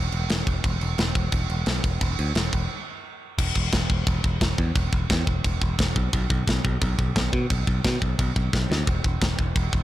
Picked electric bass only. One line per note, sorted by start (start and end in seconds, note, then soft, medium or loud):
0.12 0.25 E1 medium
0.29 0.42 E1 medium
0.47 0.59 E1 medium
0.64 0.77 E1 loud
0.81 0.94 E1 medium
0.98 1.11 E1 loud
1.15 1.28 E1 medium
1.32 1.45 E1 medium
1.50 1.62 E1 medium
1.67 1.79 B1 loud
1.84 1.96 E1 medium
2.01 2.14 E1 loud
2.19 2.31 D2 medium
2.36 2.48 E1 loud
2.53 2.65 E1 medium
3.38 3.51 E1 loud
3.56 3.68 E1 medium
3.73 3.85 E1 medium
3.90 4.02 E1 medium
4.07 4.19 E1 loud
4.24 4.37 E1 medium
4.41 4.54 E1 medium
4.58 4.71 E2 medium
4.75 4.88 E1 loud
4.93 5.05 E1 medium
5.10 5.22 E2 loud
5.27 5.39 E1 loud
5.45 5.57 E1 medium
5.62 5.74 E1 medium
5.79 5.91 E1 loud
5.96 6.08 B1 loud
6.13 6.26 B1 medium
6.30 6.42 B1 medium
6.47 6.60 B1 loud
6.64 6.77 B1 loud
6.82 6.94 B1 loud
6.98 7.11 B1 medium
7.16 7.28 B1 loud
7.33 7.45 B2 medium
7.51 7.63 B1 loud
7.67 7.80 B1 medium
7.85 7.97 B2 loud
8.02 8.14 B1 medium
8.19 8.31 B1 loud
8.36 8.48 B1 medium
8.53 8.66 B1 loud
8.70 8.82 D2 medium
8.87 9.00 E1 loud
9.04 9.17 E1 medium
9.22 9.34 E1 medium
9.39 9.51 E1 medium
9.56 9.68 E1 loud
9.73 9.83 E1 medium